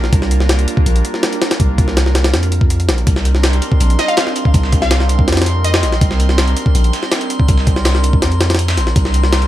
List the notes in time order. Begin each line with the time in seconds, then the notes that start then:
Already playing: A#1
0.04 snare
0.13 C2 G3 A#3 D4 F4 A#4, kick, closed hi-hat
0.22 snare
0.31 closed hi-hat
0.40 snare
0.49 snare, closed hi-hat
0.59 closed hi-hat
0.68 closed hi-hat
0.77 kick
0.86 A#1, closed hi-hat
0.96 closed hi-hat
1.05 closed hi-hat
1.14 snare
1.23 snare, closed hi-hat
1.33 closed hi-hat
1.42 snare, closed hi-hat
1.51 snare, closed hi-hat
1.60 C2 G3 A#3 D4 F4 A#4, kick, closed hi-hat
1.78 kick, closed hi-hat
1.88 snare
1.97 snare, closed hi-hat
2.06 snare
2.15 snare, closed hi-hat
2.24 snare, closed hi-hat
2.34 F2, snare, closed hi-hat
2.43 closed hi-hat
2.52 closed hi-hat
2.61 kick
2.70 closed hi-hat
2.80 closed hi-hat
2.89 A#1, snare, closed hi-hat
2.98 closed hi-hat
3.07 C2 G3 C4 D4 D#4 A#4 C6, kick, closed hi-hat
3.16 snare
3.25 closed hi-hat
3.35 snare
3.43 snare, closed hi-hat
3.53 closed hi-hat
3.62 closed hi-hat
3.72 kick
3.80 A#1, closed hi-hat
3.90 closed hi-hat
3.99 D#5, snare, closed hi-hat
4.08 F5, closed hi-hat
4.17 F5, snare, closed hi-hat
4.27 snare
4.36 closed hi-hat
4.45 kick
4.54 C2 G3 C4 D4 D#4 A#4, kick, closed hi-hat
4.63 snare
4.72 kick, closed hi-hat
4.82 F5, snare
4.91 snare, closed hi-hat
5.00 snare
5.09 closed hi-hat
5.19 kick
5.28 F2, snare, closed hi-hat
5.33 snare, closed hi-hat
5.37 snare, closed hi-hat
5.42 snare, closed hi-hat
5.46 snare, closed hi-hat
5.64 D#5, closed hi-hat
5.74 snare
5.83 A#1, snare, closed hi-hat
5.92 snare, closed hi-hat
6.01 C2 G3 C4 D4 D#4 A#4, kick, closed hi-hat
6.11 snare
6.20 closed hi-hat
6.29 snare
6.38 snare, closed hi-hat
6.48 closed hi-hat
6.57 closed hi-hat
6.66 kick
6.75 A#1, closed hi-hat
6.84 closed hi-hat
6.93 snare, closed hi-hat
7.03 snare
7.12 snare, closed hi-hat
7.21 closed hi-hat
7.30 closed hi-hat
7.40 kick
7.48 C2 G3 C4 D4 D#4 A#4, kick, closed hi-hat
7.58 snare
7.67 kick, closed hi-hat
7.76 snare
7.85 snare, closed hi-hat
7.95 snare
8.04 closed hi-hat
8.13 kick
8.22 F2, snare, closed hi-hat
8.32 closed hi-hat
8.40 snare, closed hi-hat
8.50 snare, closed hi-hat
8.55 snare, closed hi-hat
8.59 closed hi-hat
8.68 snare, closed hi-hat
8.77 A#1, snare, closed hi-hat
8.87 snare, closed hi-hat
8.96 C2 G3 A#3 D4 F4 A#4, kick, closed hi-hat
9.05 snare
9.14 closed hi-hat
9.24 snare
9.33 snare, closed hi-hat
9.42 closed hi-hat